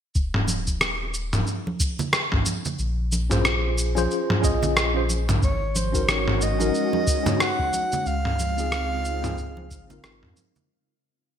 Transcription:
0.15 D#1, kick, cabasa
0.34 mid tom
0.48 high conga, cabasa
0.67 kick, cabasa
0.81 cross-stick, cabasa
1.14 cabasa
1.33 mid tom, high conga, cabasa
1.47 cabasa
1.67 high conga
1.80 kick, cabasa
1.99 low conga, cabasa
2.13 cross-stick, cabasa
2.32 G#1, kick, mid tom
2.46 high conga, cabasa
2.65 low conga, cabasa
2.79 A#1, cabasa
3.12 high conga, cabasa
3.30 C#4 F4 G#4 C5, mid tom, cabasa
3.45 cross-stick, cabasa
3.78 cabasa
3.95 C#4 F4 G#4 C5, high conga, cabasa
4.11 cabasa
4.30 mid tom, high conga
4.42 A#1 C#4 F4 G#4 D#5, kick, cabasa
4.63 low conga, cabasa
4.77 cross-stick, cabasa
4.94 C#4 F4 G#4 C5
5.10 high conga, cabasa
5.29 mid tom, low conga, cabasa
5.42 G#1 G#3 C#4 F#4 C#5, kick, cabasa
5.76 C5, high conga, cabasa
5.92 C#4 D#4 F#4 A#4, kick, cabasa
6.09 C#5, cross-stick, cabasa
6.28 mid tom
6.41 D#5, cabasa
6.59 C#4 D#4 F#4 A#4, high conga, cabasa
6.74 cabasa
6.93 high conga
7.07 kick, cabasa
7.23 C#4 D#4 F#4, mid tom, low conga, cabasa
7.29 C#5
7.40 F#5, cross-stick, cabasa
7.59 C#2, kick
7.73 high conga, cabasa
7.92 low conga, cabasa
8.06 C#2 C#3 G#3 C4 D#4 F4 F5, cabasa
8.25 mid tom
8.39 high conga, cabasa
8.57 C4 D#4 F4 G#4, cabasa
8.72 cross-stick, cabasa
9.05 cabasa
9.22 C4 D#4 F4 G#4, mid tom, high conga, cabasa
9.38 kick, cabasa
9.57 high conga
9.71 G#1, kick, cabasa
9.87 C4 D#4 F4, low conga, cabasa
9.93 A#4
10.04 G#1, cross-stick, cabasa
10.23 F2, mid tom
10.37 high conga, cabasa
10.56 low conga, cabasa

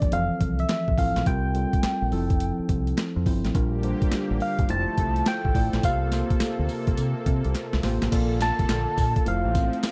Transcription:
Already playing: F3 A#3 D4 G4 A#4 D5
0.02 G1, kick, closed hi-hat
0.11 F1 E3 F3 C4 A4 F5, closed hi-hat
0.41 C2, kick, closed hi-hat
0.59 E5, closed hi-hat
0.69 snare, clap, closed hi-hat
0.88 A1, kick
0.97 A1 F3 C4 E4 A4 F5, kick, open hi-hat
1.16 A#1, snare, closed hi-hat
1.26 C2 G3 C4 F4 A#4 G5, kick, closed hi-hat
1.54 G3 C4 F4 A4, closed hi-hat
1.73 kick, closed hi-hat
1.83 muted fingered electric bass stroke, snare, clap, closed hi-hat
2.02 A#1
2.11 F1 F3 C4 E4 A4, open hi-hat
2.30 kick, closed hi-hat
2.40 closed hi-hat
2.59 muted fingered electric bass stroke
2.69 C2, kick, closed hi-hat
2.87 closed hi-hat
2.97 snare, clap, closed hi-hat
3.16 F2
3.26 G1 F3 C4 E4 C5, kick, open hi-hat
3.45 A1, snare, closed hi-hat
3.54 A#1 D3 G3 A#3 D4 F4 G4 A#4, kick, closed hi-hat
3.83 G3 D4 F4 C5, closed hi-hat
4.02 kick, closed hi-hat
4.12 muted fingered electric bass stroke, snare, clap, closed hi-hat
4.31 A1
4.40 F5, open hi-hat
4.59 G1, kick, closed hi-hat
4.69 F1 F3 A3 E4 F4 A4 C5 A5, closed hi-hat
4.88 muted fingered electric bass stroke
4.98 C2, kick, closed hi-hat
5.16 closed hi-hat
5.26 G5, snare, clap, closed hi-hat
5.45 A1, kick
5.54 A1 A3 E4 F4 D5, kick, open hi-hat
5.73 A#1, snare, closed hi-hat
5.83 C2 C3 A#3 F4 G4 C5 F5, kick, closed hi-hat, tambourine
6.12 A#3 F4 G4 C5, snare, closed hi-hat, tambourine
6.30 kick, closed hi-hat
6.40 muted fingered electric bass stroke, snare, clap, closed hi-hat, tambourine
6.59 D2
6.69 open hi-hat, tambourine
6.87 C2, kick, closed hi-hat
6.97 C3, closed hi-hat, tambourine
7.26 C3, kick, closed hi-hat
7.44 C2, closed hi-hat
7.54 snare, clap, closed hi-hat
7.73 C2, snare
7.83 A1 A#3 F4 G4 C5, snare, open hi-hat
8.02 A1, snare, closed hi-hat
8.11 A#1 D3 A#3 F4 A4 D5, kick, closed hi-hat, crash, tambourine
8.41 A5, snare, closed hi-hat, tambourine
8.59 C2, kick, closed hi-hat
8.69 A#1, snare, clap, closed hi-hat, tambourine
8.98 A#2, kick, open hi-hat, tambourine
9.16 kick, closed hi-hat
9.26 F1 F3 A3 C4 E4 F4 C5 F5, closed hi-hat
9.45 A1
9.54 A3 C4 F4 C5, kick, closed hi-hat, tambourine
9.73 closed hi-hat
9.83 snare, clap, closed hi-hat, tambourine

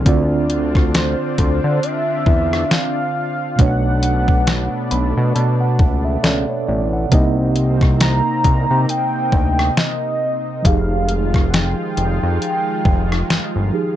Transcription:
0.03 D2 D3 C4 D4 F4, kick, closed hi-hat
0.09 D5
0.50 closed hi-hat
0.75 kick, cross-stick
0.94 C5, snare, closed hi-hat
1.38 D2, kick, closed hi-hat
1.64 D3
1.83 E5, closed hi-hat
2.26 E2, kick
2.53 cross-stick
2.71 F5, snare, closed hi-hat
3.56 B1 B2 A3 B3 D4 F#5, kick, closed hi-hat
3.62 C#5
4.03 closed hi-hat
4.28 kick
4.47 snare, closed hi-hat
4.91 B1 B5, closed hi-hat
5.17 B2
5.35 B2 A5, closed hi-hat
5.61 F#5
5.79 C#2, kick
6.05 E5
6.23 C#2 A4 D5, snare, closed hi-hat
6.49 C#5
6.68 A1 D5
6.93 F#5
7.09 C2 C3 A#3 C4 D#4, kick, closed hi-hat
7.15 D#5
7.56 closed hi-hat
7.81 kick, cross-stick
8.00 A#5, snare, closed hi-hat
8.44 C2, kick, closed hi-hat
8.71 C3
8.89 G5, closed hi-hat
9.32 D2, kick
9.59 cross-stick
9.77 D#5, snare, closed hi-hat
10.62 F1 D#3 F3 G#3 D#4 F4 G4 F5, kick, closed hi-hat
10.68 G#4
11.09 closed hi-hat
11.34 kick, cross-stick
11.49 F#5
11.54 G5, snare, closed hi-hat
11.97 F1, closed hi-hat
12.23 F2
12.42 closed hi-hat
12.85 F1, kick
13.12 cross-stick
13.30 G1, snare, closed hi-hat
13.56 G1
13.72 F3 D#4 G4 G#4

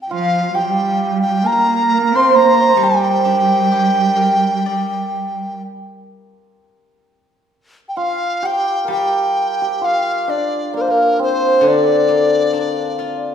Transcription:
0.02 G5
0.09 F3 F4 F5
0.54 G3 G4 G5
1.22 G5
1.44 A#3 A#4 A#5
1.53 A#4
1.59 A#4
1.67 A#4
1.75 A#4
1.82 A#4
1.91 A#4
1.98 A#4
2.12 C4 C5 C6
2.22 C5
2.31 C5
2.35 A#3 C5 A#5
2.45 C5
2.51 C5
2.60 C5
2.69 C5
2.77 G3 A#4
2.83 G4 G5
3.25 D4
3.72 G4
4.16 A#4
4.66 D5
7.89 G5
7.97 F4 F5
8.43 G4 G5
8.85 G3 A#4
8.90 G4 G5
9.62 G4
9.81 F4 F5
10.28 D4 D5
10.74 A#3 A#4
10.81 C5
10.88 A#3 A#4
11.19 C4 C5
11.61 D3 D4
11.68 D5
12.08 A#3
12.53 D4
12.99 F4

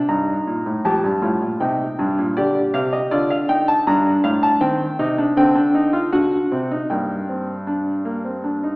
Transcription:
0.09 G2 D#4 A#5
0.47 A#2
0.66 A2
0.85 F2 G4 A5
1.04 G2
1.22 A2 F4
1.42 A#2
1.60 C3 D#4 G5
1.99 G2 D4
2.19 A#2
2.37 D3 G4 D5
2.74 C3 F5
2.93 D#5
3.11 D3 F4 D5
3.30 F5
3.49 D#4 G5
3.68 A5
3.87 G2 D4 A#5
4.24 A2 F5
4.43 A5
4.61 D#3 C4 G5
4.99 C3 D#4
5.18 D4
5.37 D3 C4 G5
5.56 D4
5.75 D#4
5.93 F4
6.12 D3 F#4 F#5
6.52 C3 C4
6.71 D#4
6.90 G2 A#3 G5
7.29 C4
7.67 D4
8.05 A#3
8.25 C4
8.44 D4
8.64 D#4

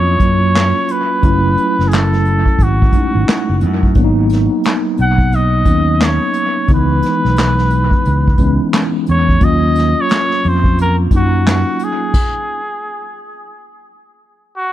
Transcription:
Already playing: F2 F#3 A#3 C#4 E4 F4 C#5
0.20 F#2 F#3 A#3 C#4 F4, kick, closed hi-hat
0.56 snare, clap, closed hi-hat
0.88 B4, closed hi-hat
1.23 F#1 F#3 A3 C#4 E4, kick, closed hi-hat
1.57 closed hi-hat
1.79 F#1, snare
1.88 G#4, closed hi-hat
1.94 A4, snare, clap
2.13 snare
2.25 closed hi-hat
2.46 kick
2.59 G#1, kick, closed hi-hat
2.63 F#4
2.82 kick
2.92 G#3 A3 C#4 D#4, muted fingered electric bass stroke, kick, closed hi-hat
3.15 G#1
3.28 muted fingered electric bass stroke, snare, clap, closed hi-hat
3.49 F#1
3.61 F#2, closed hi-hat
3.83 kick
3.95 G#1 F#3 A#3 B3 D4, kick, closed hi-hat
4.04 D#4
4.30 snare, closed hi-hat
4.64 snare, clap, closed hi-hat
4.97 B1 F#5, closed hi-hat
5.18 kick
5.32 D#5, closed hi-hat
5.65 D#2 F#3 A#3 B3 C#4, kick, closed hi-hat
6.01 C#5, snare, clap, closed hi-hat
6.34 closed hi-hat
6.68 C#2 D#3 G#3 B3 D#4, kick, closed hi-hat
6.74 E3 B4
7.02 snare, closed hi-hat
7.25 B1, snare
7.36 snare, clap, closed hi-hat
7.58 snare
7.70 closed hi-hat
7.91 kick
8.05 C#2, closed hi-hat
8.28 kick
8.38 C#2 E3 G#3 B3 C#4, kick, closed hi-hat
8.73 snare, clap, closed hi-hat
9.07 E2 C#5, closed hi-hat
9.29 kick
9.40 D#2 F#3 A#3 C#4 F4 D#5, kick, closed hi-hat
9.75 snare, closed hi-hat
10.01 C#5
10.09 snare, clap, closed hi-hat
10.31 snare
10.44 F2, open hi-hat
10.49 C5
10.64 kick
10.78 A#4, closed hi-hat
11.11 F#2 F#3 A#3 C#4 D#4, kick, closed hi-hat
11.16 F#4
11.47 F#4, snare, clap, closed hi-hat
11.79 closed hi-hat
11.84 G#4
12.14 kick, crash
14.56 F#4

